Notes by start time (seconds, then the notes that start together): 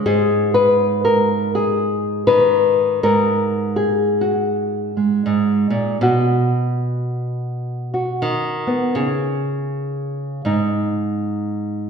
Already playing: G#3
0.06 G#2 G#4
0.54 B4
1.05 A#4
1.55 G#4
2.27 D#3 B4
3.03 G#2 A#4
3.76 G#4
4.21 F#4
4.97 G#3
5.26 G#2
5.70 A#2
6.01 B2 F#4
7.94 F#4
8.22 D#3
8.67 B3
8.95 C#3 G#4
10.45 G#2 D#4